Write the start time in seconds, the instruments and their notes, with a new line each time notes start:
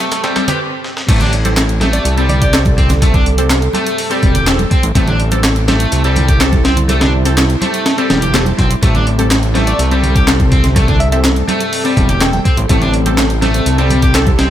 Already playing: ambient pad G3 C4 G4, overdriven electric guitar A3
0.12 snare, closed hi-hat
0.24 overdriven electric guitar G3, synth stab C4 G4 A4, snare, closed hi-hat
0.36 synth stab C4 G4 A4, snare, closed hi-hat, high conga
0.48 synth stab C4 G4 B4, overdriven electric guitar G4, snare, closed hi-hat, low conga
0.84 snare
0.97 snare
1.08 analog synth bass A1, ambient pad G3 C4 A4, overdriven electric guitar A3, synth stab C4 G4 A4, kick, closed hi-hat, crash, high conga
1.21 overdriven electric guitar D4, closed hi-hat, low conga
1.33 closed hi-hat
1.44 synth stab C4 G4 A4, closed hi-hat, high conga
1.57 snare, clap, closed hi-hat
1.69 closed hi-hat
1.81 overdriven electric guitar A3, synth stab C4 G4 A4, snare, closed hi-hat, high conga
1.93 digital synth lead D5, closed hi-hat
2.05 analog synth bass C2, closed hi-hat
2.17 overdriven electric guitar G3, synth stab C4 G4 A4, closed hi-hat
2.29 digital synth lead D5, closed hi-hat, high conga, low conga
2.42 overdriven electric guitar G4, kick, closed hi-hat
2.54 synth stab C4 G4 A4, snare, clap, closed hi-hat
2.65 kick, closed hi-hat, high conga
2.78 overdriven electric guitar C4, kick, closed hi-hat
2.89 snare, closed hi-hat, low conga
3.02 overdriven electric guitar A3, synth stab C4 G4 A4, kick, closed hi-hat, high conga
3.14 overdriven electric guitar D4, kick, closed hi-hat, low conga
3.26 closed hi-hat
3.38 synth stab C4 G4 A4, closed hi-hat, high conga
3.50 snare, clap, closed hi-hat
3.62 closed hi-hat
3.73 overdriven electric guitar A3, synth stab C4 G4 A4, closed hi-hat, high conga
3.87 closed hi-hat
3.98 closed hi-hat, open hi-hat
4.10 overdriven electric guitar G3, synth stab C4 G4 A4, closed hi-hat
4.22 analog synth bass E1, kick, closed hi-hat, high conga
4.35 overdriven electric guitar G4, closed hi-hat, low conga
4.47 synth stab C4 G4 A4, snare, clap, closed hi-hat
4.59 closed hi-hat, high conga
4.71 overdriven electric guitar C4, kick, closed hi-hat
4.83 analog synth bass A1, closed hi-hat
4.95 analog synth bass A1, overdriven electric guitar A3, synth stab C4 G4 A4, ambient pad E4, kick, closed hi-hat, high conga
5.08 overdriven electric guitar D4, closed hi-hat, low conga
5.20 closed hi-hat
5.31 synth stab C4 G4 A4, closed hi-hat, high conga
5.44 snare, clap, closed hi-hat
5.56 closed hi-hat
5.68 overdriven electric guitar A3, synth stab C4 G4 A4, snare, closed hi-hat, high conga
5.80 closed hi-hat
5.92 analog synth bass C2, closed hi-hat
6.04 overdriven electric guitar G3, synth stab C4 G4 A4, closed hi-hat
6.16 closed hi-hat, high conga, low conga
6.28 overdriven electric guitar G4, kick, closed hi-hat
6.41 synth stab C4 G4 A4, snare, clap, closed hi-hat
6.52 kick, closed hi-hat, high conga
6.65 overdriven electric guitar C4, snare, closed hi-hat
6.77 closed hi-hat, low conga
6.89 overdriven electric guitar A3, synth stab C4 G4 A4, closed hi-hat, high conga
7.01 overdriven electric guitar D4, snare, closed hi-hat, low conga
7.25 synth stab C4 G4 A4, closed hi-hat, high conga
7.37 snare, clap, closed hi-hat
7.50 closed hi-hat
7.62 overdriven electric guitar A3, synth stab C4 G4 A4, closed hi-hat, high conga
7.74 closed hi-hat
7.86 snare, closed hi-hat
7.98 overdriven electric guitar G3, synth stab C4 G4 A4, closed hi-hat
8.10 analog synth bass E1, snare, closed hi-hat, high conga
8.22 overdriven electric guitar G4, closed hi-hat, low conga
8.34 synth stab C4 G4 A4, snare, clap, closed hi-hat
8.46 closed hi-hat, high conga
8.58 analog synth bass B1, overdriven electric guitar C4, kick, closed hi-hat
8.71 closed hi-hat
8.82 analog synth bass A1, overdriven electric guitar A3, synth stab C4 G4 A4, ambient pad A4, kick, closed hi-hat, high conga
8.95 overdriven electric guitar D4, closed hi-hat, low conga
9.07 closed hi-hat
9.19 synth stab C4 G4 A4, closed hi-hat, high conga
9.31 snare, clap, closed hi-hat
9.43 closed hi-hat
9.55 overdriven electric guitar A3, synth stab C4 G4 A4, snare, closed hi-hat, high conga
9.67 digital synth lead D5, closed hi-hat
9.79 analog synth bass C2, closed hi-hat
9.91 overdriven electric guitar G3, synth stab C4 G4 A4, closed hi-hat
10.03 closed hi-hat, high conga, low conga
10.16 overdriven electric guitar G4, kick, closed hi-hat
10.27 synth stab C4 G4 A4, snare, clap, closed hi-hat
10.40 kick, closed hi-hat, high conga
10.52 overdriven electric guitar C4, kick, closed hi-hat
10.64 snare, closed hi-hat, low conga
10.76 overdriven electric guitar A3, synth stab C4 G4 A4, kick, closed hi-hat, high conga
10.88 overdriven electric guitar D4, kick, closed hi-hat, low conga
11.00 digital synth lead E5, closed hi-hat
11.12 synth stab C4 G4 A4, digital synth lead E5, closed hi-hat, high conga
11.24 snare, clap, closed hi-hat
11.36 closed hi-hat
11.48 overdriven electric guitar A3, synth stab C4 G4 A4, closed hi-hat, high conga
11.61 closed hi-hat
11.73 closed hi-hat, open hi-hat
11.85 overdriven electric guitar G3, synth stab C4 G4 A4, closed hi-hat
11.97 analog synth bass E1, kick, closed hi-hat, high conga
12.09 overdriven electric guitar G4, closed hi-hat, low conga
12.21 synth stab C4 G4 A4, digital synth lead G5, snare, clap, closed hi-hat
12.33 digital synth lead G5, closed hi-hat, high conga
12.45 overdriven electric guitar C4, kick, closed hi-hat
12.57 analog synth bass A1, closed hi-hat
12.69 analog synth bass A1, overdriven electric guitar A3, synth stab C4 G4 A4, ambient pad G4, kick, closed hi-hat, high conga
12.81 overdriven electric guitar D4, closed hi-hat, low conga
12.94 closed hi-hat
13.06 synth stab C4 G4 A4, closed hi-hat, high conga
13.18 snare, clap, closed hi-hat
13.30 closed hi-hat
13.42 overdriven electric guitar A3, synth stab C4 G4 A4, snare, closed hi-hat, high conga
13.54 closed hi-hat
13.66 analog synth bass C2, closed hi-hat
13.78 overdriven electric guitar G3, synth stab C4 G4 A4, closed hi-hat
13.90 closed hi-hat, high conga, low conga
14.02 overdriven electric guitar G4, kick, closed hi-hat
14.15 synth stab C4 G4 A4, snare, clap, closed hi-hat
14.27 kick, closed hi-hat, high conga
14.39 overdriven electric guitar C4, snare, closed hi-hat